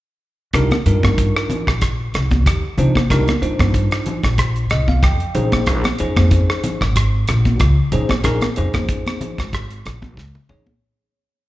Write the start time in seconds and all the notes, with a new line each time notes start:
0.53 C2 D4 D#4 F4 A#4, kick, cross-stick, closed hi-hat
0.71 cross-stick, closed hi-hat, high conga
0.86 G2 D4 D#4 F4 A#4, closed hi-hat
1.03 G2, kick, cross-stick, high conga
1.18 kick, closed hi-hat
1.36 cross-stick
1.49 closed hi-hat, low conga
1.67 A#1, kick, cross-stick
1.81 kick, cross-stick, closed hi-hat
2.14 C2, cross-stick, closed hi-hat
2.31 kick, closed hi-hat, high conga
2.46 D#2, kick, cross-stick, closed hi-hat
2.78 C3 D4 D#4 F4 C5, closed hi-hat, low conga
2.95 kick, cross-stick, high conga
3.10 C2 D4 D#4 F4 A#4, kick, cross-stick, closed hi-hat
3.28 cross-stick, closed hi-hat, high conga
3.42 G2 D4 D#4 F4 C5, closed hi-hat
3.59 G2, kick, cross-stick, closed hi-hat, high conga
3.74 kick, closed hi-hat
3.91 cross-stick, closed hi-hat
4.06 closed hi-hat, low conga
4.23 A#1, kick, cross-stick, closed hi-hat
4.38 kick, cross-stick, closed hi-hat
4.56 closed hi-hat
4.70 C2 D#5, cross-stick, closed hi-hat
4.88 F5, kick, high conga
5.03 F2 G5, kick, cross-stick, closed hi-hat
5.20 closed hi-hat
5.35 A#1 C#4 D#4 G#4 C5, closed hi-hat, low conga
5.52 kick, cross-stick, closed hi-hat, high conga
5.66 A#1, kick, cross-stick, closed hi-hat
5.84 cross-stick, closed hi-hat, high conga
5.98 F2 C#4 D#4 G#4 C5, closed hi-hat
6.16 F2, kick, cross-stick, high conga
6.31 kick, closed hi-hat
6.50 cross-stick
6.64 closed hi-hat, low conga
6.81 G#1, kick, cross-stick
6.96 kick, cross-stick, closed hi-hat
7.28 A#1, cross-stick, closed hi-hat
7.45 kick, closed hi-hat, high conga
7.60 C#2, kick, cross-stick, closed hi-hat
7.92 A#2 C#4 D#4 G#4 C5, closed hi-hat, low conga
8.09 kick, cross-stick, high conga
8.24 A#1 C#4 D#4 G#4 A#4, kick, cross-stick, closed hi-hat
8.41 cross-stick, closed hi-hat, high conga
8.56 F2 C#4 D#4 G#4 C5, closed hi-hat
8.73 F2, kick, cross-stick, closed hi-hat, high conga, low conga
8.88 kick, closed hi-hat
9.06 cross-stick, closed hi-hat, high conga
9.21 closed hi-hat, low conga
9.38 G#1, kick, cross-stick, closed hi-hat
9.53 kick, cross-stick, closed hi-hat
9.70 closed hi-hat
9.86 A#1, cross-stick, closed hi-hat
10.02 kick, high conga
10.17 C#2, kick, snare
10.35 high tom
10.49 A#2 C#4 D#4 G#4 C#5, mid tom, low conga
10.66 floor tom, high conga